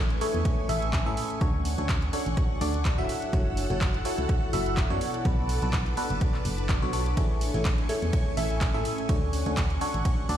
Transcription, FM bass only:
0.00 0.18 A1 loud
0.34 0.43 E2 medium
0.69 1.03 A1 medium
1.06 1.15 A2 medium
1.41 1.75 D2 loud
1.78 2.10 D2 loud
2.26 2.35 A1 medium
2.61 2.95 D2 loud
2.98 3.07 D1 medium
3.33 3.67 F#1 loud
3.70 4.02 F#1 loud
4.18 4.27 C#2 medium
4.53 4.87 F#1 medium
4.90 4.99 F#2 medium
5.25 5.59 B1 loud
5.62 5.94 B1 loud
6.10 6.19 F#1 medium
6.45 6.79 F#1 loud
6.82 7.14 B1 loud
7.17 7.51 A1 loud
7.54 7.86 A1 loud
8.02 8.11 E2 medium
8.37 8.71 A1 medium
8.74 8.84 A2 medium
9.09 9.43 D2 loud
9.46 9.78 D2 loud
9.94 10.03 A1 medium
10.29 10.37 D2 medium

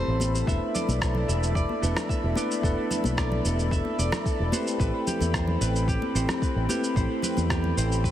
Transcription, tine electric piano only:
0.00 0.46 A3 medium
0.00 0.49 C4 medium
0.00 0.48 E4 medium
0.00 0.49 G4 medium
0.00 0.49 B4 medium
0.00 0.49 C5 medium
0.46 1.79 A3 medium
0.46 1.79 B3 medium
0.46 1.79 D4 medium
0.46 1.80 E4 medium
0.46 1.80 B4 medium
1.82 2.33 A3 medium
1.82 2.33 B3 medium
1.82 2.33 D4 medium
1.82 2.34 E4 medium
1.82 2.34 B4 medium
2.36 2.60 A3 medium
2.36 2.60 B3 medium
2.36 2.60 D4 medium
2.36 2.61 E4 medium
2.36 2.61 B4 medium
2.62 4.49 A3 medium
2.62 4.49 B3 medium
2.62 4.50 D4 medium
2.62 4.50 E4 medium
2.62 4.51 B4 medium
4.52 4.76 A3 loud
4.52 4.77 C4 medium
4.52 4.77 E4 medium
4.52 4.77 G4 medium
4.52 4.77 B4 loud
4.78 6.11 A3 medium
4.78 6.12 C4 medium
4.78 6.12 E4 medium
4.78 6.12 G4 medium
4.78 6.13 B5 medium
6.15 6.66 A3 medium
6.15 6.66 C4 medium
6.15 6.66 E4 medium
6.15 6.66 G4 medium
6.15 6.67 B5 medium
6.69 6.93 A3 medium
6.69 6.93 C4 medium
6.69 6.93 E4 medium
6.69 6.93 G4 medium
6.69 6.94 B4 medium
6.95 8.11 A3 medium
6.95 8.11 C4 medium
6.95 8.11 E4 medium
6.95 8.11 G4 medium
6.95 8.11 B5 medium

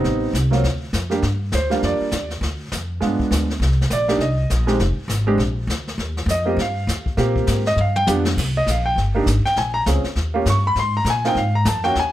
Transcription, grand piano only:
0.00 0.31 G3 medium
0.00 0.32 B3 medium
0.00 0.32 C4 medium
0.00 0.32 D#4 medium
0.51 0.62 F#3 medium
0.51 0.62 A#3 medium
0.51 0.62 C4 medium
0.51 0.63 F4 medium
1.10 1.21 G3 medium
1.10 1.21 A#3 medium
1.10 1.22 D4 medium
1.10 1.22 G4 medium
1.55 1.81 C5 medium
1.70 2.09 G3 medium
1.70 2.10 A#3 medium
1.70 2.10 D4 medium
1.70 2.10 F4 medium
1.85 2.28 D5 medium
3.01 3.45 G#3 medium
3.01 3.45 B3 medium
3.01 3.46 D4 medium
3.01 3.46 F4 medium
3.93 4.19 D5 medium
4.08 4.19 A#3 medium
4.08 4.19 D4 medium
4.08 4.19 D#4 medium
4.08 4.19 G4 medium
4.21 4.65 D#5 medium
4.67 4.78 G#3 medium
4.67 4.78 C4 medium
4.67 4.79 D#4 medium
4.67 4.79 G4 medium
5.27 5.38 G#3 medium
5.27 5.38 C4 medium
5.27 5.38 D4 medium
5.27 5.38 G4 medium
6.31 6.57 D#5 medium
6.45 6.56 A#3 medium
6.45 6.57 C4 medium
6.45 6.57 F4 medium
6.45 6.57 G4 medium
6.61 7.04 F5 medium
7.17 7.62 A#3 medium
7.17 7.62 C4 medium
7.17 7.62 F4 medium
7.17 7.62 G4 medium
7.67 7.78 D#5 loud
7.81 7.97 F5 medium
7.96 8.07 G5 loud
8.07 8.23 B3 medium
8.07 8.23 D4 medium
8.07 8.24 F4 medium
8.07 8.24 G4 medium
8.57 8.67 D#5 loud
8.71 8.86 F5 medium
8.86 8.96 G5 medium
9.15 9.25 A#3 medium
9.15 9.26 D4 medium
9.15 9.26 D#4 medium
9.15 9.26 G4 medium
9.46 9.56 G5 loud
9.58 9.75 G#5 medium
9.74 9.81 A#5 loud
9.86 10.02 C4 medium
9.86 10.02 C#4 soft
9.86 10.03 F4 soft
9.86 10.03 G#4 medium
10.34 10.44 A#3 medium
10.34 10.45 C#4 medium
10.34 10.45 F4 medium
10.34 10.45 G4 medium
10.50 10.65 C#6 loud
10.67 10.77 B5 loud
10.79 10.95 C6 loud
10.97 11.07 A#5 loud
11.10 11.25 G#5 medium
11.25 11.35 A#3 medium
11.25 11.35 C4 medium
11.25 11.35 D#4 medium
11.25 11.35 F4 medium
11.25 11.37 G5 medium
11.38 11.54 F5 medium
11.55 11.66 A#5 medium
11.68 11.84 A5 medium
11.84 11.94 A#3 medium
11.84 11.94 C#4 medium
11.84 11.94 F4 medium
11.84 11.94 F#4 medium
11.84 11.95 G5 loud
11.99 12.12 G#5 loud

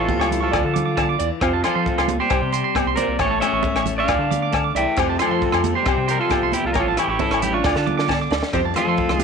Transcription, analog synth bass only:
0.19 0.50 C#2 loud
0.53 0.63 D2 loud
0.65 1.16 D3 medium
1.20 1.30 E2 medium
1.41 1.62 F2 loud
1.76 1.86 F3 loud
1.98 2.19 C#2 loud
2.30 2.41 C2 loud
2.42 2.63 C3 medium
2.86 2.96 C2 medium
3.08 3.18 C2 medium
3.20 3.41 A1 loud
3.53 3.63 A1 medium
3.74 4.06 A1 medium
4.08 4.18 D2 loud
4.19 4.72 D3 loud
4.74 4.86 C2 loud
4.98 5.19 F2 loud
5.31 5.41 F3 loud
5.54 5.75 F2 loud
5.86 5.97 C2 loud
5.98 6.19 C3 medium
6.42 6.53 C2 medium
6.65 6.75 C2 medium
6.75 6.96 A1 loud
7.07 7.18 A1 loud
7.30 7.62 A1 loud
7.64 7.75 D2 loud
7.76 8.28 D3 medium
8.31 8.42 D2 loud
8.53 8.74 F2 loud
8.87 8.97 F3 loud
9.09 9.24 C#2 loud

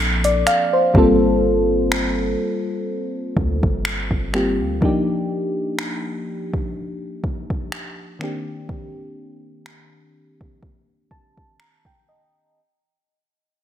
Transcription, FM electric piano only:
0.00 0.90 F3 medium
0.00 0.90 A#3 medium
0.00 0.91 C4 medium
0.00 0.92 D4 medium
0.00 0.92 A4 medium
0.25 0.46 D5 medium
0.47 0.72 F5 medium
0.73 1.19 C5 medium
0.94 4.29 G3 medium
0.94 4.29 A#3 medium
0.94 4.30 C4 medium
0.94 4.31 F4 medium
0.98 4.31 A4 medium
4.33 4.82 G3 medium
4.33 4.81 A#3 soft
4.33 4.82 C4 soft
4.33 4.83 F4 medium
4.33 4.83 G4 medium
4.81 8.16 F3 medium
4.81 8.17 A#3 medium
4.81 8.17 D4 medium
4.81 8.18 D#4 medium
4.85 8.18 G4 medium
8.19 12.03 D#3 medium
8.19 12.04 A#3 medium
8.19 12.04 C4 medium
8.19 12.05 D4 medium
8.24 12.05 G4 medium
11.11 11.56 A5 medium
11.60 11.84 A#5 medium
11.86 12.07 G5 medium
12.09 12.53 D#5 medium

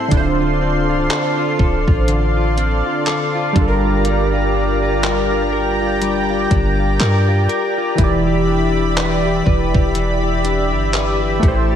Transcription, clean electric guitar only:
0.00 0.23 A2 medium
0.00 0.23 G3 medium
0.00 0.61 C4 medium
0.00 0.23 E4 medium
0.12 2.08 D3 medium
0.40 0.89 F4 medium
0.61 2.56 C4 medium
0.89 1.38 F4 medium
1.10 1.58 A4 medium
1.39 1.87 F4 medium
1.59 3.05 A4 medium
1.88 2.36 F4 medium
2.08 5.58 D3 medium
2.37 2.86 F4 medium
2.58 3.67 C4 medium
2.86 3.35 F4 medium
3.07 3.67 A4 medium
3.35 3.84 F4 medium
3.56 4.05 G3 medium
3.84 4.32 F4 medium
4.05 6.01 G3 medium
4.34 4.82 F4 medium
4.54 6.50 D4 medium
4.83 5.31 F4 medium
5.03 5.51 A#4 medium
5.32 5.80 F4 medium
5.52 6.99 A#4 medium
5.81 6.29 F4 medium
6.02 9.52 G3 medium
6.30 6.78 F4 medium
6.51 8.47 D4 medium
6.79 7.27 F4 medium
7.00 7.48 A#4 medium
7.28 7.76 F4 medium
7.49 8.10 A#4 medium
7.77 8.10 F4 medium
7.98 9.94 E3 medium
8.27 8.75 G4 medium
8.47 10.43 D4 medium
8.76 9.25 G4 medium
8.97 9.45 B4 medium
9.25 9.74 G4 medium
9.46 10.92 B4 medium
9.74 10.23 G4 medium
9.95 11.76 E3 medium
10.23 10.72 G4 medium
10.44 11.54 D4 medium
10.73 11.22 G4 medium
10.93 11.54 B4 medium
11.22 11.71 G4 medium
11.43 11.76 A3 medium
11.71 11.76 G4 medium

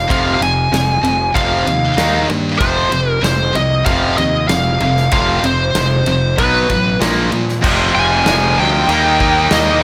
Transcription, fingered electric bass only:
0.10 0.38 F1 medium
0.39 0.68 F1 medium
0.71 1.00 F1 medium
1.02 1.31 F1 medium
1.36 1.63 F1 medium
1.66 1.94 D#2 medium
1.98 2.26 D#2 medium
2.29 2.57 G2 medium
2.60 2.88 F1 loud
2.92 3.20 F1 medium
3.22 3.51 F1 loud
3.55 3.83 C2 medium
3.86 4.14 F1 medium
4.18 4.46 D#2 medium
4.48 4.77 F1 medium
4.81 5.09 F1 medium
5.13 5.40 F1 medium
5.43 5.71 F1 medium
5.75 6.03 F1 medium
6.07 6.34 F1 medium
6.39 6.66 B1 medium
6.70 6.98 A1 medium
7.01 7.28 A#1 medium
7.32 7.60 A#2 medium
7.64 7.92 F1 loud
7.96 8.24 F1 medium
8.28 8.56 F1 loud
8.58 8.86 D2 medium
8.88 9.47 D#2 medium
9.51 9.80 D#2 medium

